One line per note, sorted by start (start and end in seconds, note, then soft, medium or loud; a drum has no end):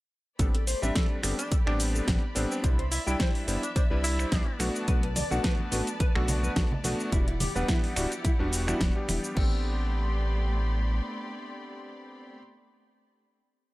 0.39 0.75 A1 loud
0.39 0.53 G3 medium
0.39 2.61 A3 medium
0.39 0.53 B3 medium
0.39 0.53 C4 medium
0.39 0.54 D4 medium
0.39 2.61 G4 medium
0.39 0.44 A4 loud
0.39 9.33 D5 medium
0.39 4.56 B5 medium
0.39 kick loud
0.39 closed hi-hat medium
0.39 shaker soft
0.55 0.61 A4 medium
0.55 closed hi-hat medium
0.67 0.79 C5 loud
0.67 open hi-hat loud
0.67 shaker medium
0.82 0.91 A1 medium
0.82 1.20 G3 loud
0.82 1.21 C4 medium
0.82 1.21 D4 loud
0.82 0.92 E5 loud
0.82 shaker soft
0.95 1.03 A4 loud
0.95 kick loud
0.95 snare loud
0.95 closed hi-hat medium
0.95 shaker soft
1.23 1.34 G1 medium
1.23 1.37 G3 medium
1.23 1.37 B3 medium
1.23 1.37 C4 medium
1.23 1.38 D4 loud
1.23 1.31 A4 medium
1.23 finger snap medium
1.23 open hi-hat loud
1.23 shaker medium
1.39 1.53 D4 medium
1.39 closed hi-hat medium
1.39 shaker soft
1.51 1.64 A1 soft
1.51 1.56 A4 loud
1.51 kick loud
1.51 closed hi-hat medium
1.51 shaker soft
1.66 2.01 A1 medium
1.66 2.04 G3 medium
1.66 2.04 B3 medium
1.66 2.05 C4 medium
1.66 1.81 D4 medium
1.66 2.05 D4 loud
1.66 1.73 G4 medium
1.66 finger snap medium
1.80 open hi-hat loud
1.80 shaker medium
1.95 2.04 A4 loud
1.95 shaker soft
2.07 2.18 A1 medium
2.07 2.21 G3 medium
2.07 2.21 B3 medium
2.07 2.22 C4 medium
2.07 2.22 D4 medium
2.07 kick loud
2.07 snare loud
2.07 closed hi-hat medium
2.07 shaker soft
2.35 2.46 A1 medium
2.35 2.60 G3 medium
2.35 2.60 B3 medium
2.35 2.45 C4 medium
2.35 2.61 C4 medium
2.35 2.61 D4 loud
2.35 2.43 A4 medium
2.35 open hi-hat loud
2.35 shaker medium
2.51 2.59 C4 medium
2.51 shaker soft
2.63 2.99 C2 medium
2.63 2.77 G3 medium
2.63 2.78 B3 medium
2.63 2.78 D4 medium
2.63 2.78 E4 medium
2.63 2.68 C5 loud
2.63 4.58 E5 medium
2.63 kick loud
2.63 closed hi-hat medium
2.63 shaker soft
2.79 2.85 C5 medium
2.79 closed hi-hat medium
2.92 3.01 E4 medium
2.92 3.03 E5 loud
2.92 open hi-hat loud
2.92 shaker medium
3.06 3.16 C2 medium
3.06 3.44 G3 loud
3.06 3.45 D4 medium
3.06 3.15 E4 medium
3.06 3.45 E4 loud
3.06 3.17 G5 loud
3.06 shaker soft
3.20 3.27 C5 loud
3.20 kick loud
3.20 snare loud
3.20 closed hi-hat medium
3.20 shaker soft
3.35 open hi-hat medium
3.47 3.58 G1 medium
3.47 3.61 G3 medium
3.47 3.62 B3 medium
3.47 3.62 D4 medium
3.47 3.62 E4 medium
3.47 3.55 C5 medium
3.47 open hi-hat loud
3.47 shaker medium
3.63 3.71 D4 medium
3.63 closed hi-hat medium
3.63 shaker soft
3.76 3.86 D4 medium
3.76 3.80 C5 loud
3.76 kick loud
3.76 closed hi-hat medium
3.76 shaker soft
3.90 4.25 C2 medium
3.90 4.29 G3 loud
3.90 4.29 D4 medium
3.90 4.29 E4 loud
3.90 3.97 B4 medium
4.04 4.66 E4 loud
4.04 open hi-hat loud
4.04 shaker medium
4.19 4.29 C5 loud
4.19 finger snap medium
4.19 shaker soft
4.31 4.42 C2 medium
4.31 4.46 G3 medium
4.31 4.46 B3 medium
4.31 4.46 D4 medium
4.31 4.46 E4 medium
4.31 kick loud
4.31 snare loud
4.31 closed hi-hat medium
4.31 shaker soft
4.59 4.70 B1 medium
4.59 4.85 A3 loud
4.59 4.85 B3 medium
4.59 7.10 B3 medium
4.59 4.85 D4 medium
4.59 4.85 F#4 loud
4.59 7.10 B4 medium
4.59 4.68 B4 medium
4.59 7.10 A5 medium
4.59 finger snap medium
4.59 open hi-hat loud
4.59 shaker medium
4.76 shaker soft
4.87 5.23 B1 loud
4.87 5.01 A3 medium
4.87 5.02 B3 medium
4.87 5.02 D4 medium
4.87 5.02 F#4 medium
4.87 4.93 B4 medium
4.87 kick loud
4.87 closed hi-hat medium
4.87 shaker soft
5.03 5.10 B4 medium
5.03 closed hi-hat medium
5.16 5.28 D5 loud
5.16 open hi-hat loud
5.16 high conga medium
5.16 low conga medium
5.16 shaker medium
5.31 5.40 B1 medium
5.31 5.69 A3 medium
5.31 5.69 B3 medium
5.31 5.69 D4 medium
5.31 5.69 F#4 loud
5.31 5.41 F#5 loud
5.31 shaker soft
5.44 5.52 B4 loud
5.44 kick loud
5.44 snare loud
5.44 closed hi-hat medium
5.44 shaker soft
5.59 high conga medium
5.72 5.82 A1 loud
5.72 5.86 A3 medium
5.72 5.86 B3 medium
5.72 5.86 D4 medium
5.72 5.86 F#4 loud
5.72 5.80 B4 medium
5.72 open hi-hat loud
5.72 shaker medium
5.87 closed hi-hat medium
5.87 shaker soft
6.00 6.12 B1 soft
6.00 6.05 B4 loud
6.00 kick loud
6.00 closed hi-hat medium
6.00 high conga medium
6.00 shaker soft
6.15 6.50 B1 medium
6.15 6.53 A3 medium
6.15 6.53 B3 medium
6.15 6.53 D4 medium
6.15 6.53 F#4 loud
6.15 6.22 A4 medium
6.15 finger snap medium
6.28 open hi-hat loud
6.28 low conga medium
6.28 shaker medium
6.43 6.53 B4 loud
6.43 high conga medium
6.43 shaker soft
6.56 6.67 B1 medium
6.56 6.70 A3 medium
6.56 6.70 B3 medium
6.56 6.70 D4 medium
6.56 6.70 F#4 medium
6.56 kick loud
6.56 snare loud
6.56 closed hi-hat medium
6.56 shaker soft
6.72 low conga medium
6.84 6.95 B1 medium
6.84 7.09 A3 loud
6.84 7.09 B3 medium
6.84 7.09 D4 medium
6.84 7.10 F#4 loud
6.84 6.92 B4 medium
6.84 open hi-hat loud
6.84 high conga medium
6.84 shaker medium
7.00 shaker soft
7.12 7.48 E1 loud
7.12 7.26 G3 medium
7.12 7.26 B3 medium
7.12 9.34 E4 medium
7.12 7.17 E4 loud
7.12 9.34 G4 medium
7.12 9.34 F#5 medium
7.12 kick loud
7.12 closed hi-hat medium
7.12 shaker soft
7.28 7.34 E4 medium
7.28 closed hi-hat medium
7.40 7.52 G4 loud
7.40 open hi-hat loud
7.40 high conga medium
7.40 low conga medium
7.40 shaker medium
7.55 7.64 E1 medium
7.55 7.93 G3 loud
7.55 7.93 B3 medium
7.55 7.94 D4 medium
7.55 7.65 B4 loud
7.55 7.94 F#5 loud
7.55 shaker soft
7.68 7.76 E4 loud
7.68 kick loud
7.68 snare loud
7.68 closed hi-hat medium
7.68 shaker soft
7.83 open hi-hat medium
7.83 high conga medium
7.96 8.07 D1 loud
7.96 8.10 G3 medium
7.96 8.10 B3 medium
7.96 8.11 D4 medium
7.96 8.04 E4 medium
7.96 8.11 F#4 loud
7.96 finger snap medium
7.96 open hi-hat loud
7.96 shaker medium
8.12 closed hi-hat soft
8.12 shaker soft
8.25 8.29 E4 loud
8.25 kick loud
8.25 closed hi-hat medium
8.25 high conga loud
8.25 shaker soft
8.39 8.74 E1 medium
8.39 8.64 G3 medium
8.39 8.65 B3 medium
8.39 8.65 D4 medium
8.39 8.46 D4 medium
8.39 8.65 F#4 loud
8.53 open hi-hat loud
8.53 shaker medium
8.67 8.92 G3 medium
8.67 8.92 B3 medium
8.67 8.92 D4 medium
8.67 8.77 E4 loud
8.67 8.92 F#4 loud
8.67 finger snap medium
8.67 closed hi-hat soft
8.67 high conga medium
8.67 shaker soft
8.81 8.91 E1 medium
8.81 kick loud
8.81 snare loud
8.81 closed hi-hat medium
8.81 shaker soft
8.95 9.33 G3 medium
8.95 9.33 B3 medium
8.95 9.34 D4 medium
8.95 9.34 G4 medium
9.09 9.19 E1 medium
9.09 9.16 E4 medium
9.09 finger snap medium
9.09 open hi-hat loud
9.09 high conga loud
9.09 shaker medium
9.24 shaker soft
9.35 11.01 A1 medium
9.35 12.37 A3 medium
9.35 12.36 B3 medium
9.35 12.37 C4 medium
9.35 12.37 D4 medium
9.35 12.37 G4 medium
9.35 12.38 G4 medium
9.35 9.63 A4 medium
9.35 12.37 D5 medium
9.35 12.37 B5 medium
9.35 12.37 C6 medium
9.35 kick loud
9.35 crash medium